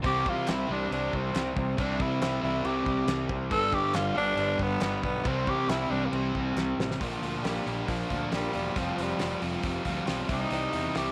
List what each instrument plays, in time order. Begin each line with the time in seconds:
0.02 fingered electric bass C2, twelve-string acoustic guitar C3 E3 G3 C4 E4, upright piano C4 E4 G4 C5, kick, crash
0.06 tenor saxophone G4
0.26 fingered electric bass C3, tenor saxophone F4, upright piano C5, kick
0.36 twelve-string acoustic guitar G3 C4 E4
0.47 fingered electric bass C2, twelve-string acoustic guitar C3 E3 G3 C4 E4, upright piano C4 E4 G4 C5, tenor saxophone E4, snare, clap, crash
0.69 fingered electric bass C2, overdriven electric guitar C3, twelve-string acoustic guitar E3 G3 C4 E4, upright piano C4 E4 G4 C5, tenor saxophone D4
0.91 fingered electric bass C2, upright piano C4 E4 G4 C5, tenor saxophone D4, crash
1.12 fingered electric bass C2, twelve-string acoustic guitar E3 G3 C4 E4, upright piano C4 E4 G4 C5, tenor saxophone C4, kick
1.23 twelve-string acoustic guitar G3 C4 E4
1.34 fingered electric bass C2, twelve-string acoustic guitar C3 E3 G3 C4 E4, upright piano C4 E4 G4 C5, snare, clap, crash
1.56 fingered electric bass C2, twelve-string acoustic guitar E3 G3 C4 E4, upright piano C4 E4 G4 C5, tenor saxophone C4, kick
1.67 twelve-string acoustic guitar G3 C4 E4
1.78 fingered electric bass C2, twelve-string acoustic guitar C3 E3 G3 C4 E4, upright piano C4 E4 G4 C5, tenor saxophone D4, kick, crash
2.00 fingered electric bass C3, upright piano C4 E4 G4 C5, tenor saxophone E4, kick
2.10 twelve-string acoustic guitar G3 C4 E4
2.20 fingered electric bass C2, twelve-string acoustic guitar C3 E3 G3 C4 E4, upright piano C4 E4 G4 C5, tenor saxophone E4, snare, clap, crash
2.41 fingered electric bass C2, overdriven electric guitar C3 C4, twelve-string acoustic guitar E3 G3, upright piano C4 E4 G4, tenor saxophone E4
2.46 twelve-string acoustic guitar C4 E4
2.64 fingered electric bass C2, upright piano C4 E4 G4 C5, tenor saxophone G4, crash
2.85 fingered electric bass C2, twelve-string acoustic guitar E3 G3 C4 E4, upright piano C4 E4 G4 C5, kick
3.07 fingered electric bass C2, twelve-string acoustic guitar C3 E3 G3 C4 E4, upright piano C4 E4 G4 C5, snare, clap, crash
3.18 twelve-string acoustic guitar G3 C4 E4
3.28 fingered electric bass C2, twelve-string acoustic guitar E3 G3 C4 E4, upright piano C4 E4 G4 C5, kick
3.39 twelve-string acoustic guitar G3 C4 E4
3.50 fingered electric bass G1, twelve-string acoustic guitar G2 D3 G3 B3 D4 G4, upright piano B3 D4 G4 B4, tenor saxophone A4, kick, crash
3.72 fingered electric bass G2, upright piano B3 D4 G4 B4, tenor saxophone G4, kick
3.81 twelve-string acoustic guitar G3 B3 D4 G4
3.93 fingered electric bass G1, twelve-string acoustic guitar G2 D3 G3 B3 D4 G4, upright piano B3 D4 G4 B4, tenor saxophone F4, snare, clap, crash
4.14 fingered electric bass G1, overdriven electric guitar D3, twelve-string acoustic guitar G3 B3 D4 G4, tenor saxophone D4, upright piano B4
4.19 overdriven electric guitar G2
4.36 fingered electric bass G1, upright piano B3 D4 G4 B4, crash
4.58 fingered electric bass G1, twelve-string acoustic guitar G3 B3 D4 G4, upright piano B3 G4, kick
4.62 tenor saxophone B3
4.80 fingered electric bass G1, twelve-string acoustic guitar G2 D3 G3 B3 D4 G4, upright piano B3 D4, snare, clap, crash
4.84 upright piano B4
4.92 twelve-string acoustic guitar G3 B3 D4 G4
5.02 fingered electric bass B1, twelve-string acoustic guitar G3 B3 D4 G4, tenor saxophone B3, upright piano B3 D4 G4, kick
5.06 upright piano D5
5.14 twelve-string acoustic guitar G3 B3 D4 G4
5.24 fingered electric bass C2, twelve-string acoustic guitar C3 E3 G3 C4 E4, upright piano C4 E4 G4 C5, tenor saxophone C4, kick, crash
5.47 fingered electric bass C3, upright piano C4 E4 G4 C5, tenor saxophone G4, kick
5.57 twelve-string acoustic guitar G3 C4 E4
5.67 fingered electric bass C2, twelve-string acoustic guitar C3 E3 G3 C4 E4, upright piano C4 E4 G4 C5, tenor saxophone E4, snare, clap, crash
5.90 fingered electric bass C2, overdriven electric guitar C3, twelve-string acoustic guitar E3 G3, upright piano C4 E4 G4 C5, tenor saxophone D4
5.94 twelve-string acoustic guitar C4 E4
6.06 tenor saxophone A#3
6.12 fingered electric bass C2, tenor saxophone C4, upright piano C4 E4 G4 C5, crash
6.34 fingered electric bass C2, twelve-string acoustic guitar E3 G3 C4 E4, upright piano C4 E4 G4 C5, kick
6.45 twelve-string acoustic guitar G3 C4 E4
6.56 fingered electric bass C2, twelve-string acoustic guitar C3 E3 G3 C4 E4, upright piano C4 E4 G4 C5, snare, clap
6.78 fingered electric bass A1, twelve-string acoustic guitar E3 G3 C4 E4, upright piano C4 E4 G4 C5, snare
6.89 twelve-string acoustic guitar G3 C4 E4, snare
7.01 fingered electric bass A#1, twelve-string acoustic guitar A#2 D3 A#3 D4 F4, overdriven electric guitar F3, kick, open hi-hat
7.22 fingered electric bass D2, twelve-string acoustic guitar D3 A#3 D4, overdriven electric guitar F4, open hi-hat
7.26 twelve-string acoustic guitar F4
7.43 fingered electric bass A#1, twelve-string acoustic guitar A#2 D3 A#3 D4 F4, overdriven electric guitar F3, tenor saxophone G3, snare, open hi-hat
7.65 fingered electric bass A#1, twelve-string acoustic guitar D3 A#3 D4 F4, open hi-hat
7.76 twelve-string acoustic guitar A#3 D4 F4
7.86 fingered electric bass A#1, overdriven electric guitar F3 A#3 D4 F4, tenor saxophone F3, kick, open hi-hat
7.98 twelve-string acoustic guitar A#3 D4 F4
8.09 fingered electric bass D2, overdriven electric guitar A#2 F3, twelve-string acoustic guitar D3 A#3 D4 F4, kick, open hi-hat
8.14 overdriven electric guitar A#3
8.20 twelve-string acoustic guitar A#3 D4 F4
8.31 fingered electric bass A#1, twelve-string acoustic guitar A#2 D3 A#3 D4 F4, overdriven electric guitar F3, tenor saxophone G3, snare, open hi-hat
8.52 fingered electric bass E1, twelve-string acoustic guitar D3 A#3 D4 F4, open hi-hat
8.75 fingered electric bass F1, twelve-string acoustic guitar F3 G3 C4 F4, tenor saxophone F3, kick, open hi-hat
8.96 fingered electric bass F1, twelve-string acoustic guitar F3 G3 C4 F4, open hi-hat
9.01 overdriven electric guitar G3, tenor saxophone G3
9.18 fingered electric bass F1, twelve-string acoustic guitar F3 G3 C4 F4, snare, open hi-hat
9.40 fingered electric bass F1, twelve-string acoustic guitar F3 G3 C4, open hi-hat
9.44 twelve-string acoustic guitar F4
9.51 twelve-string acoustic guitar G3 C4 F4
9.63 fingered electric bass F1, overdriven electric guitar F3 G3 C4 F4, kick, open hi-hat
9.72 twelve-string acoustic guitar G3 C4 F4
9.83 fingered electric bass D2, twelve-string acoustic guitar F3 G3 C4 F4, kick, open hi-hat
9.88 overdriven electric guitar F3 G3
9.93 twelve-string acoustic guitar C4 F4
9.97 twelve-string acoustic guitar G3
10.05 fingered electric bass B1, twelve-string acoustic guitar F3 G3 C4 F4, snare, open hi-hat
10.28 fingered electric bass C2, twelve-string acoustic guitar E3 G3 C4 E4, kick, open hi-hat
10.32 overdriven electric guitar C3, tenor saxophone D#4
10.50 fingered electric bass C2, twelve-string acoustic guitar C3 E3 G3 C4 E4, open hi-hat
10.72 fingered electric bass E2, twelve-string acoustic guitar E3 G3 C4, overdriven electric guitar E4, open hi-hat
10.76 twelve-string acoustic guitar E4
10.94 fingered electric bass C2, twelve-string acoustic guitar C3 E3 G3 C4 E4, tenor saxophone G4, snare, open hi-hat